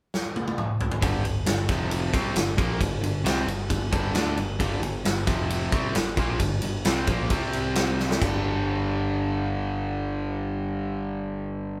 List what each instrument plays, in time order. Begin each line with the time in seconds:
0.14 snare
0.36 high tom
0.48 high tom
0.58 mid tom
0.81 floor tom
0.92 floor tom
1.02 picked electric bass G1, distorted electric guitar G2 D3 G3, kick, ride
1.24 picked electric bass G1, distorted electric guitar G2 D3, ride
1.46 picked electric bass G1, distorted electric guitar G2 D3, snare, ride
1.69 picked electric bass F1, distorted electric guitar F2 C3 F3, kick, snare, ride
1.91 ride
2.13 picked electric bass C2, distorted electric guitar C3 G3 C4, kick, ride
2.35 picked electric bass G1, distorted electric guitar G2 D3, snare, ride
2.57 picked electric bass A#1, distorted electric guitar A#2 F3 A#3, kick, ride
2.80 picked electric bass G1, distorted electric guitar G2 D3, kick, ride
3.01 picked electric bass G1, distorted electric guitar G2 D3, ride
3.24 picked electric bass C2, distorted electric guitar C3 G3 C4, snare, ride
3.46 picked electric bass G1, distorted electric guitar G2 D3, ride
3.69 picked electric bass G1, distorted electric guitar G2 D3, kick, ride
3.91 picked electric bass G1, distorted electric guitar G2 D3 G3, kick, ride
4.14 picked electric bass D2, distorted electric guitar D3 A3 D4, snare, ride
4.37 picked electric bass G1, distorted electric guitar G2 D3, ride
4.59 picked electric bass G1, distorted electric guitar G2 D3 G3, kick, ride
4.82 picked electric bass G1, distorted electric guitar G2 D3, ride
5.05 picked electric bass G1, distorted electric guitar G2 D3, snare, ride
5.26 picked electric bass F1, distorted electric guitar F2 C3 F3, kick, snare, ride
5.50 ride
5.72 picked electric bass C2, distorted electric guitar C3 G3 C4, kick, ride
5.95 picked electric bass G1, distorted electric guitar G2 D3, snare, ride
6.17 picked electric bass A#1, distorted electric guitar A#2 F3 A#3, kick, ride
6.40 picked electric bass G1, distorted electric guitar G2 D3, kick, ride
6.62 picked electric bass G1, distorted electric guitar G2 D3, ride
6.85 picked electric bass C2, distorted electric guitar C3 G3 C4, snare, ride
7.07 picked electric bass A#1, distorted electric guitar A#2 F3 A#3, kick, ride
7.30 picked electric bass C2, distorted electric guitar C3 G3 C4, kick, ride
7.53 ride
7.75 snare, ride
7.99 snare
8.11 snare
8.21 picked electric bass G1, distorted electric guitar G2 D3, kick, crash
8.25 distorted electric guitar G3